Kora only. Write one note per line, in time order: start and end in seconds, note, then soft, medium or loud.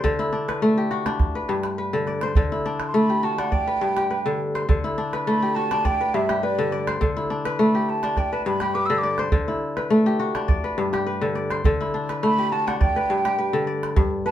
0.00 1.25 D3 medium
0.00 0.29 A3 medium
0.00 0.32 D4 medium
0.00 0.72 G4 medium
0.00 0.54 C5 medium
0.00 0.85 D5 medium
0.19 1.76 E4 medium
0.33 1.06 D4 medium
0.48 1.35 B4 medium
0.62 2.62 A3 medium
0.78 2.19 G4 medium
0.91 1.55 F#4 medium
1.06 2.65 D4 medium
1.35 1.78 B4 medium
1.49 2.41 G2 medium
1.78 2.29 B4 medium
1.93 2.35 D3 medium
2.07 3.18 D5 medium
2.23 3.42 C5 medium
2.37 3.57 D3 medium
2.52 4.09 E4 medium
2.66 3.38 D4 medium
2.94 4.94 A3 medium
3.09 3.96 G4 medium
3.23 3.87 F#4 medium
3.38 4.97 D4 medium
3.52 4.63 D5 medium
3.67 4.10 B4 medium
3.81 4.73 G2 medium
3.97 5.38 G4 medium
4.10 4.61 B4 medium
4.26 4.67 D3 medium
4.55 5.19 C5 medium
4.69 5.89 D3 medium
4.84 6.41 E4 medium
4.98 5.71 D4 medium
5.13 6.00 B4 medium
5.27 7.27 A3 medium
5.42 6.29 G4 medium
5.56 6.20 F#4 medium
5.71 7.30 D4 medium
5.85 6.72 D5 medium
6.01 6.43 B4 medium
6.14 7.06 G2 medium
6.29 7.71 G4 medium
6.43 6.94 B4 medium
6.59 7.00 D3 medium
6.72 7.83 D5 medium
6.88 7.51 C5 medium
7.01 8.22 D3 medium
7.17 8.73 E4 medium
7.30 8.03 D4 medium
7.45 8.32 B4 medium
7.59 9.59 A3 medium
7.75 8.61 G4 medium
8.04 9.71 D4 medium
8.17 9.03 D5 medium
8.33 8.74 B4 medium
8.46 9.38 G2 medium
8.61 10.03 G4 medium
8.75 9.25 B4 medium
8.90 9.31 D3 medium
9.03 10.14 D5 medium
9.19 9.83 C5 medium
9.32 10.54 D3 medium
9.48 11.05 E4 medium
9.77 10.64 B4 medium
9.90 11.90 A3 medium
10.06 10.92 G4 medium
10.20 10.84 F#4 medium
10.35 11.94 D4 medium
10.48 11.35 D5 medium
10.64 11.06 B4 medium
10.78 11.70 G2 medium
10.93 12.34 G4 medium
11.07 11.57 B4 medium
11.21 11.64 D3 medium
11.35 12.46 D5 medium
11.51 12.16 C5 medium
11.65 12.86 D3 medium
11.81 13.37 E4 medium
11.94 12.67 D4 medium
12.10 12.96 B4 medium
12.23 14.23 A3 medium
12.38 13.25 G4 medium
12.52 13.16 F#4 medium
12.68 14.31 D4 medium
12.81 13.67 D5 medium
12.96 13.38 B4 medium
13.10 13.95 G2 medium
13.25 14.31 G4 medium
13.38 14.25 B4 medium
13.53 14.02 D3 medium
13.67 14.31 D5 medium
13.96 14.31 G2 medium
14.26 14.31 B4 medium